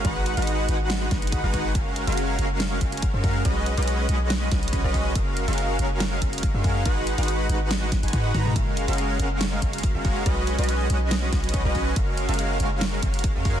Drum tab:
HH |x---x-xxx---x---x---x-xxx---x---|x---x-xxx---x---x---x-xxx---o---|x---x-xxx---x---x---x-xxx---o---|x---x-xxx---x---x---x-xxx---o---|
SD |----------------o---o-----------|----------------o---------------|----------------o---o-----------|----------------o---------------|
T1 |--------------------------------|--------------------------------|--------------------------------|--------------------------------|
T2 |--------------------------------|--------------------------------|--------------------------------|--------------------------------|
BD |o-------------------o---o---o---|o-------------------o---o---o---|o-------------------o---o---o---|o-------------------o---o---o---|

HH |x---x-xxx---x---x---x-xxx---o---|x---x-xxx---x---x---x-xxx---o---|x---x-xxx---x---x---x-xxx---o---|x---x-xxx---x---x---x-xxx---o---|
SD |----------------o---o-----------|----------------o---------------|----------------o---o-----------|----------------o---------------|
T1 |----------------------------o---|--------------------------------|--------------------------------|--------------------------------|
T2 |------------------------------o-|--------------------------------|--------------------------------|--------------------------------|
BD |o-------------------o---o---o---|o-------------------o---o---o---|o-------------------o---o---o---|o-------------------o---o---o---|